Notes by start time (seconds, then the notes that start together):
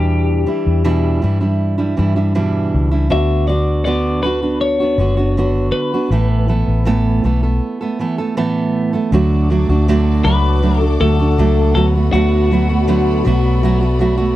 Already playing: E2 B2 E3 G3 D4 E4 G4
0.46 E3 G3 D4 E4
0.67 E2
0.84 E2 B2 E3 G3 D4 E4
1.22 G2 E3 G3 D4 E4
1.41 E3 G3 D4 E4
1.78 E3 G3 D4 E4
1.97 G2 E3 G3 D4 E4
2.16 E3 G3 D4 E4
2.35 E2 B2 E3 G3 D4 E4
2.74 C#2
2.91 E3 G3 D4 E4
3.10 D2 D3 B3 D4 F#4 E5
3.47 D3 B3 D4 F#4 D5
3.85 D3 B3 D4 F#4 D5
4.23 D3 B3 D4 F#4 B4
4.42 B3 D4 F#4
4.61 C#5
4.80 B3 D4 F#4
4.98 F#1 D3 B3 D4 F#4
5.17 B3 D4 F#4
5.37 D3 B3 D4 F#4
5.72 B4
5.94 B3 D4 F#4
6.10 A1 A2 E3 A3 B3 A4
6.48 E3 A3 B3 A4
6.68 A1
6.85 A2 E3 A3 B3 A4
7.24 B1 E3 A3 B3 A4
7.43 A3 B3 A4
7.81 A3 B3 A4
7.99 E3 A3 B3 A4
8.18 A3 B3 A4
8.37 A2 E3 A3 B3 A4
8.93 A3 B3 A4
9.12 D2 D3 F#3 A3 D4 F#4 A4 D5 F#5 D6
9.50 F#3 A3 D4 F#4
9.69 D2 A3 D4 F#4
9.88 D3 F#3 A3 D4 F#4
10.25 C#2 F#3 A3 D4 F#4 B4
10.62 F#3 A3 D4 F#4
10.77 A4
10.82 A3 D4 F#4
11.00 D2 F#3 A3 D4 F#4 A4
11.19 A3 D4 F#4
11.38 C#2 F#3 A3 D4 F#4
11.74 D2 F#3 A3 B3 F#4 A4 D5 B5
11.95 A3 B3 F#4
12.13 D2 D3 F#3 A3 B3 F#4
12.52 F#3 A3 B3 F#4
12.69 A3 B3 F#4
12.88 D3 F#3 A3 B3 F#4
13.25 B1 F#3 A3 B3 F#4
13.63 F#3 A3 B3 F#4
13.81 A3 B3 F#4
13.99 F#3 A3 B3 F#4
14.17 A3 B3 F#4